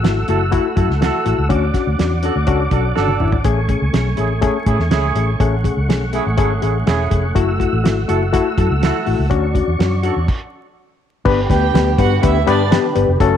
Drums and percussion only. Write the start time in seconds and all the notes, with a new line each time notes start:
0.04 snare, closed hi-hat
0.28 closed hi-hat
0.52 kick, closed hi-hat
0.77 kick, closed hi-hat
0.91 snare
1.02 snare, closed hi-hat
1.26 closed hi-hat
1.50 kick, closed hi-hat
1.74 kick, snare, closed hi-hat
1.99 snare, closed hi-hat
2.23 closed hi-hat
2.47 kick, closed hi-hat
2.71 kick, closed hi-hat
2.97 snare
3.08 high tom
3.20 mid tom
3.32 floor tom
3.44 kick, closed hi-hat
3.69 kick, closed hi-hat
3.94 snare, closed hi-hat
4.17 closed hi-hat
4.42 kick, closed hi-hat
4.66 kick, closed hi-hat
4.80 snare
4.91 snare, closed hi-hat
5.16 closed hi-hat
5.40 kick, closed hi-hat
5.64 kick, closed hi-hat
5.90 snare, closed hi-hat
6.13 closed hi-hat
6.38 kick, closed hi-hat
6.62 closed hi-hat
6.87 snare, closed hi-hat
7.11 kick, closed hi-hat
7.36 kick, closed hi-hat
7.60 kick, closed hi-hat
7.86 snare, closed hi-hat
8.09 closed hi-hat
8.34 kick, closed hi-hat
8.58 kick, closed hi-hat
8.83 snare, closed hi-hat
9.06 open hi-hat
9.31 kick, closed hi-hat
9.55 kick, closed hi-hat
9.80 snare, closed hi-hat
10.03 closed hi-hat
10.28 kick, crash
11.25 kick, crash
11.50 kick, snare, closed hi-hat
11.75 snare, closed hi-hat
11.98 kick, closed hi-hat
12.23 kick, closed hi-hat
12.47 closed hi-hat
12.72 snare, closed hi-hat
12.96 closed hi-hat
13.20 kick, closed hi-hat